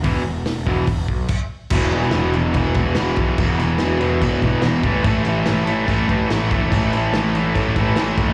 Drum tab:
CC |------------x---|x-x-x-x-x-x-x-x-|x-x-x-x-x-x-x-x-|x-x-x-x-x-x-x-x-|
HH |o---o---o-------|----------------|----------------|----------------|
SD |----o-----------|---oo-------o---|----o-------o---|----o-------o---|
BD |o-----o-o-o-o---|o-------o-o---o-|o-------o-o---o-|o-------o-o---o-|

CC |x-x-x-x-x-x-x-x-|
HH |----------------|
SD |----o-------o---|
BD |o-------o-o---o-|